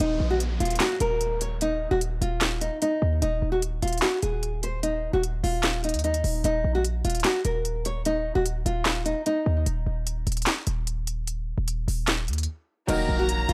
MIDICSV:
0, 0, Header, 1, 8, 480
1, 0, Start_track
1, 0, Time_signature, 4, 2, 24, 8
1, 0, Key_signature, -6, "minor"
1, 0, Tempo, 402685
1, 16128, End_track
2, 0, Start_track
2, 0, Title_t, "Violin section"
2, 0, Program_c, 0, 48
2, 15361, Note_on_c, 0, 82, 113
2, 16128, Note_off_c, 0, 82, 0
2, 16128, End_track
3, 0, Start_track
3, 0, Title_t, "Nylon-string guitar"
3, 0, Program_c, 1, 24
3, 6, Note_on_c, 1, 63, 94
3, 341, Note_off_c, 1, 63, 0
3, 364, Note_on_c, 1, 66, 78
3, 453, Note_off_c, 1, 66, 0
3, 718, Note_on_c, 1, 65, 77
3, 902, Note_off_c, 1, 65, 0
3, 956, Note_on_c, 1, 66, 93
3, 1140, Note_off_c, 1, 66, 0
3, 1202, Note_on_c, 1, 70, 75
3, 1652, Note_off_c, 1, 70, 0
3, 1687, Note_on_c, 1, 73, 78
3, 1867, Note_off_c, 1, 73, 0
3, 1929, Note_on_c, 1, 63, 98
3, 2263, Note_off_c, 1, 63, 0
3, 2277, Note_on_c, 1, 66, 86
3, 2369, Note_off_c, 1, 66, 0
3, 2642, Note_on_c, 1, 65, 83
3, 3092, Note_off_c, 1, 65, 0
3, 3114, Note_on_c, 1, 63, 77
3, 3299, Note_off_c, 1, 63, 0
3, 3362, Note_on_c, 1, 63, 93
3, 3812, Note_off_c, 1, 63, 0
3, 3837, Note_on_c, 1, 63, 94
3, 4176, Note_off_c, 1, 63, 0
3, 4194, Note_on_c, 1, 66, 74
3, 4288, Note_off_c, 1, 66, 0
3, 4558, Note_on_c, 1, 65, 83
3, 4741, Note_off_c, 1, 65, 0
3, 4792, Note_on_c, 1, 66, 95
3, 4978, Note_off_c, 1, 66, 0
3, 5038, Note_on_c, 1, 68, 68
3, 5490, Note_off_c, 1, 68, 0
3, 5526, Note_on_c, 1, 72, 83
3, 5707, Note_off_c, 1, 72, 0
3, 5758, Note_on_c, 1, 63, 99
3, 6097, Note_off_c, 1, 63, 0
3, 6119, Note_on_c, 1, 66, 84
3, 6211, Note_off_c, 1, 66, 0
3, 6480, Note_on_c, 1, 65, 93
3, 6931, Note_off_c, 1, 65, 0
3, 6967, Note_on_c, 1, 63, 74
3, 7147, Note_off_c, 1, 63, 0
3, 7203, Note_on_c, 1, 63, 90
3, 7652, Note_off_c, 1, 63, 0
3, 7686, Note_on_c, 1, 63, 97
3, 8021, Note_off_c, 1, 63, 0
3, 8044, Note_on_c, 1, 66, 80
3, 8134, Note_off_c, 1, 66, 0
3, 8398, Note_on_c, 1, 65, 77
3, 8582, Note_off_c, 1, 65, 0
3, 8635, Note_on_c, 1, 66, 93
3, 8820, Note_off_c, 1, 66, 0
3, 8881, Note_on_c, 1, 70, 78
3, 9332, Note_off_c, 1, 70, 0
3, 9367, Note_on_c, 1, 73, 76
3, 9547, Note_off_c, 1, 73, 0
3, 9608, Note_on_c, 1, 63, 101
3, 9942, Note_off_c, 1, 63, 0
3, 9956, Note_on_c, 1, 66, 89
3, 10049, Note_off_c, 1, 66, 0
3, 10322, Note_on_c, 1, 65, 83
3, 10772, Note_off_c, 1, 65, 0
3, 10794, Note_on_c, 1, 63, 77
3, 10979, Note_off_c, 1, 63, 0
3, 11042, Note_on_c, 1, 63, 90
3, 11492, Note_off_c, 1, 63, 0
3, 15365, Note_on_c, 1, 63, 98
3, 15701, Note_off_c, 1, 63, 0
3, 15723, Note_on_c, 1, 66, 79
3, 15813, Note_off_c, 1, 66, 0
3, 16076, Note_on_c, 1, 65, 80
3, 16128, Note_off_c, 1, 65, 0
3, 16128, End_track
4, 0, Start_track
4, 0, Title_t, "Felt piano"
4, 0, Program_c, 2, 0
4, 0, Control_c, 2, 64, 127
4, 14, Control_c, 2, 64, 0
4, 15344, Note_on_c, 2, 51, 92
4, 15352, Note_on_c, 2, 54, 96
4, 15358, Note_on_c, 2, 58, 95
4, 15366, Note_on_c, 2, 66, 98
4, 15373, Note_on_c, 2, 70, 112
4, 15591, Control_c, 2, 64, 127
4, 16053, Note_off_c, 2, 51, 0
4, 16057, Note_off_c, 2, 54, 0
4, 16060, Note_off_c, 2, 58, 0
4, 16064, Note_off_c, 2, 66, 0
4, 16067, Note_off_c, 2, 70, 0
4, 16128, End_track
5, 0, Start_track
5, 0, Title_t, "808-style bass"
5, 0, Program_c, 3, 38
5, 0, Note_on_c, 3, 27, 113
5, 230, Note_off_c, 3, 27, 0
5, 239, Note_on_c, 3, 34, 102
5, 700, Note_off_c, 3, 34, 0
5, 719, Note_on_c, 3, 27, 105
5, 950, Note_off_c, 3, 27, 0
5, 1199, Note_on_c, 3, 27, 104
5, 2236, Note_off_c, 3, 27, 0
5, 2279, Note_on_c, 3, 27, 102
5, 2625, Note_off_c, 3, 27, 0
5, 2640, Note_on_c, 3, 27, 107
5, 3215, Note_off_c, 3, 27, 0
5, 3599, Note_on_c, 3, 39, 105
5, 3830, Note_off_c, 3, 39, 0
5, 3839, Note_on_c, 3, 27, 111
5, 4070, Note_off_c, 3, 27, 0
5, 4079, Note_on_c, 3, 27, 100
5, 4540, Note_off_c, 3, 27, 0
5, 4559, Note_on_c, 3, 27, 103
5, 4789, Note_off_c, 3, 27, 0
5, 5040, Note_on_c, 3, 27, 105
5, 6076, Note_off_c, 3, 27, 0
5, 6120, Note_on_c, 3, 27, 102
5, 6465, Note_off_c, 3, 27, 0
5, 6480, Note_on_c, 3, 27, 110
5, 7080, Note_on_c, 3, 39, 99
5, 7098, Note_off_c, 3, 27, 0
5, 7422, Note_off_c, 3, 39, 0
5, 7439, Note_on_c, 3, 27, 103
5, 7670, Note_off_c, 3, 27, 0
5, 7680, Note_on_c, 3, 27, 113
5, 7910, Note_off_c, 3, 27, 0
5, 7920, Note_on_c, 3, 34, 102
5, 8380, Note_off_c, 3, 34, 0
5, 8399, Note_on_c, 3, 27, 103
5, 8630, Note_off_c, 3, 27, 0
5, 8879, Note_on_c, 3, 27, 105
5, 9916, Note_off_c, 3, 27, 0
5, 9959, Note_on_c, 3, 27, 101
5, 10305, Note_off_c, 3, 27, 0
5, 10319, Note_on_c, 3, 27, 105
5, 10895, Note_off_c, 3, 27, 0
5, 11279, Note_on_c, 3, 39, 108
5, 11509, Note_off_c, 3, 39, 0
5, 11519, Note_on_c, 3, 27, 113
5, 11749, Note_off_c, 3, 27, 0
5, 11759, Note_on_c, 3, 27, 103
5, 12220, Note_off_c, 3, 27, 0
5, 12239, Note_on_c, 3, 27, 104
5, 12469, Note_off_c, 3, 27, 0
5, 12719, Note_on_c, 3, 27, 107
5, 13756, Note_off_c, 3, 27, 0
5, 13799, Note_on_c, 3, 27, 101
5, 14145, Note_off_c, 3, 27, 0
5, 14159, Note_on_c, 3, 27, 107
5, 14639, Note_on_c, 3, 39, 101
5, 14657, Note_off_c, 3, 27, 0
5, 14867, Note_off_c, 3, 39, 0
5, 15359, Note_on_c, 3, 27, 113
5, 15589, Note_off_c, 3, 27, 0
5, 15599, Note_on_c, 3, 34, 102
5, 16060, Note_off_c, 3, 34, 0
5, 16079, Note_on_c, 3, 27, 105
5, 16128, Note_off_c, 3, 27, 0
5, 16128, End_track
6, 0, Start_track
6, 0, Title_t, "Downlifter"
6, 0, Program_c, 4, 103
6, 0, Note_on_c, 4, 60, 86
6, 3839, Note_off_c, 4, 60, 0
6, 16128, End_track
7, 0, Start_track
7, 0, Title_t, "Impact"
7, 0, Program_c, 5, 103
7, 15359, Note_on_c, 5, 60, 87
7, 16128, Note_off_c, 5, 60, 0
7, 16128, End_track
8, 0, Start_track
8, 0, Title_t, "Drums"
8, 480, Note_on_c, 9, 42, 77
8, 599, Note_off_c, 9, 42, 0
8, 720, Note_on_c, 9, 42, 55
8, 780, Note_off_c, 9, 42, 0
8, 780, Note_on_c, 9, 42, 55
8, 840, Note_off_c, 9, 42, 0
8, 840, Note_on_c, 9, 42, 53
8, 900, Note_off_c, 9, 42, 0
8, 900, Note_on_c, 9, 42, 56
8, 953, Note_off_c, 9, 42, 0
8, 953, Note_on_c, 9, 42, 84
8, 954, Note_on_c, 9, 39, 90
8, 959, Note_on_c, 9, 38, 110
8, 1072, Note_off_c, 9, 42, 0
8, 1073, Note_off_c, 9, 39, 0
8, 1079, Note_off_c, 9, 38, 0
8, 1196, Note_on_c, 9, 42, 72
8, 1315, Note_off_c, 9, 42, 0
8, 1439, Note_on_c, 9, 42, 67
8, 1558, Note_off_c, 9, 42, 0
8, 1679, Note_on_c, 9, 42, 73
8, 1799, Note_off_c, 9, 42, 0
8, 1920, Note_on_c, 9, 42, 76
8, 2039, Note_off_c, 9, 42, 0
8, 2400, Note_on_c, 9, 42, 79
8, 2519, Note_off_c, 9, 42, 0
8, 2642, Note_on_c, 9, 42, 65
8, 2762, Note_off_c, 9, 42, 0
8, 2872, Note_on_c, 9, 42, 84
8, 2873, Note_on_c, 9, 39, 91
8, 2879, Note_on_c, 9, 38, 115
8, 2991, Note_off_c, 9, 42, 0
8, 2992, Note_off_c, 9, 39, 0
8, 2998, Note_off_c, 9, 38, 0
8, 3116, Note_on_c, 9, 42, 71
8, 3235, Note_off_c, 9, 42, 0
8, 3359, Note_on_c, 9, 42, 69
8, 3478, Note_off_c, 9, 42, 0
8, 3840, Note_on_c, 9, 42, 73
8, 3959, Note_off_c, 9, 42, 0
8, 4320, Note_on_c, 9, 42, 80
8, 4439, Note_off_c, 9, 42, 0
8, 4559, Note_on_c, 9, 42, 55
8, 4620, Note_off_c, 9, 42, 0
8, 4620, Note_on_c, 9, 42, 54
8, 4679, Note_off_c, 9, 42, 0
8, 4679, Note_on_c, 9, 42, 55
8, 4739, Note_off_c, 9, 42, 0
8, 4739, Note_on_c, 9, 42, 53
8, 4792, Note_off_c, 9, 42, 0
8, 4792, Note_on_c, 9, 42, 86
8, 4793, Note_on_c, 9, 39, 95
8, 4799, Note_on_c, 9, 38, 115
8, 4911, Note_off_c, 9, 42, 0
8, 4912, Note_off_c, 9, 39, 0
8, 4918, Note_off_c, 9, 38, 0
8, 5036, Note_on_c, 9, 42, 71
8, 5155, Note_off_c, 9, 42, 0
8, 5279, Note_on_c, 9, 42, 69
8, 5398, Note_off_c, 9, 42, 0
8, 5519, Note_on_c, 9, 42, 71
8, 5638, Note_off_c, 9, 42, 0
8, 5760, Note_on_c, 9, 42, 75
8, 5879, Note_off_c, 9, 42, 0
8, 6240, Note_on_c, 9, 42, 79
8, 6359, Note_off_c, 9, 42, 0
8, 6483, Note_on_c, 9, 46, 49
8, 6602, Note_off_c, 9, 46, 0
8, 6712, Note_on_c, 9, 42, 85
8, 6713, Note_on_c, 9, 39, 88
8, 6719, Note_on_c, 9, 38, 117
8, 6831, Note_off_c, 9, 42, 0
8, 6832, Note_off_c, 9, 39, 0
8, 6838, Note_off_c, 9, 38, 0
8, 6959, Note_on_c, 9, 42, 59
8, 7019, Note_off_c, 9, 42, 0
8, 7019, Note_on_c, 9, 42, 60
8, 7079, Note_off_c, 9, 42, 0
8, 7079, Note_on_c, 9, 42, 63
8, 7139, Note_off_c, 9, 42, 0
8, 7139, Note_on_c, 9, 42, 58
8, 7199, Note_off_c, 9, 42, 0
8, 7199, Note_on_c, 9, 42, 42
8, 7319, Note_off_c, 9, 42, 0
8, 7319, Note_on_c, 9, 42, 70
8, 7438, Note_off_c, 9, 42, 0
8, 7439, Note_on_c, 9, 46, 52
8, 7558, Note_off_c, 9, 46, 0
8, 7679, Note_on_c, 9, 42, 76
8, 7799, Note_off_c, 9, 42, 0
8, 8160, Note_on_c, 9, 42, 78
8, 8279, Note_off_c, 9, 42, 0
8, 8399, Note_on_c, 9, 42, 54
8, 8459, Note_off_c, 9, 42, 0
8, 8459, Note_on_c, 9, 42, 56
8, 8519, Note_off_c, 9, 42, 0
8, 8519, Note_on_c, 9, 42, 57
8, 8580, Note_off_c, 9, 42, 0
8, 8580, Note_on_c, 9, 42, 54
8, 8632, Note_off_c, 9, 42, 0
8, 8632, Note_on_c, 9, 42, 84
8, 8633, Note_on_c, 9, 39, 90
8, 8639, Note_on_c, 9, 38, 118
8, 8751, Note_off_c, 9, 42, 0
8, 8752, Note_off_c, 9, 39, 0
8, 8758, Note_off_c, 9, 38, 0
8, 8876, Note_on_c, 9, 42, 70
8, 8995, Note_off_c, 9, 42, 0
8, 9118, Note_on_c, 9, 42, 70
8, 9238, Note_off_c, 9, 42, 0
8, 9359, Note_on_c, 9, 42, 72
8, 9478, Note_off_c, 9, 42, 0
8, 9600, Note_on_c, 9, 42, 76
8, 9719, Note_off_c, 9, 42, 0
8, 10079, Note_on_c, 9, 42, 80
8, 10199, Note_off_c, 9, 42, 0
8, 10322, Note_on_c, 9, 42, 64
8, 10442, Note_off_c, 9, 42, 0
8, 10552, Note_on_c, 9, 42, 87
8, 10553, Note_on_c, 9, 39, 93
8, 10559, Note_on_c, 9, 38, 119
8, 10671, Note_off_c, 9, 42, 0
8, 10672, Note_off_c, 9, 39, 0
8, 10678, Note_off_c, 9, 38, 0
8, 10796, Note_on_c, 9, 42, 70
8, 10915, Note_off_c, 9, 42, 0
8, 11039, Note_on_c, 9, 42, 66
8, 11158, Note_off_c, 9, 42, 0
8, 11519, Note_on_c, 9, 42, 76
8, 11639, Note_off_c, 9, 42, 0
8, 11999, Note_on_c, 9, 42, 80
8, 12119, Note_off_c, 9, 42, 0
8, 12239, Note_on_c, 9, 42, 55
8, 12299, Note_off_c, 9, 42, 0
8, 12299, Note_on_c, 9, 42, 54
8, 12359, Note_off_c, 9, 42, 0
8, 12359, Note_on_c, 9, 42, 54
8, 12419, Note_off_c, 9, 42, 0
8, 12419, Note_on_c, 9, 42, 57
8, 12472, Note_off_c, 9, 42, 0
8, 12472, Note_on_c, 9, 42, 87
8, 12473, Note_on_c, 9, 39, 92
8, 12478, Note_on_c, 9, 38, 117
8, 12591, Note_off_c, 9, 42, 0
8, 12592, Note_off_c, 9, 39, 0
8, 12598, Note_off_c, 9, 38, 0
8, 12715, Note_on_c, 9, 42, 73
8, 12834, Note_off_c, 9, 42, 0
8, 12958, Note_on_c, 9, 42, 71
8, 13078, Note_off_c, 9, 42, 0
8, 13199, Note_on_c, 9, 42, 75
8, 13318, Note_off_c, 9, 42, 0
8, 13439, Note_on_c, 9, 42, 74
8, 13558, Note_off_c, 9, 42, 0
8, 13919, Note_on_c, 9, 42, 81
8, 14038, Note_off_c, 9, 42, 0
8, 14163, Note_on_c, 9, 46, 48
8, 14282, Note_off_c, 9, 46, 0
8, 14392, Note_on_c, 9, 42, 84
8, 14393, Note_on_c, 9, 39, 91
8, 14399, Note_on_c, 9, 38, 115
8, 14511, Note_off_c, 9, 42, 0
8, 14512, Note_off_c, 9, 39, 0
8, 14518, Note_off_c, 9, 38, 0
8, 14639, Note_on_c, 9, 42, 59
8, 14699, Note_off_c, 9, 42, 0
8, 14699, Note_on_c, 9, 42, 62
8, 14759, Note_off_c, 9, 42, 0
8, 14759, Note_on_c, 9, 42, 61
8, 14819, Note_off_c, 9, 42, 0
8, 14819, Note_on_c, 9, 42, 60
8, 14939, Note_off_c, 9, 42, 0
8, 15359, Note_on_c, 9, 49, 100
8, 15360, Note_on_c, 9, 42, 79
8, 15479, Note_off_c, 9, 42, 0
8, 15479, Note_off_c, 9, 49, 0
8, 15840, Note_on_c, 9, 42, 85
8, 15959, Note_off_c, 9, 42, 0
8, 16079, Note_on_c, 9, 42, 55
8, 16128, Note_off_c, 9, 42, 0
8, 16128, End_track
0, 0, End_of_file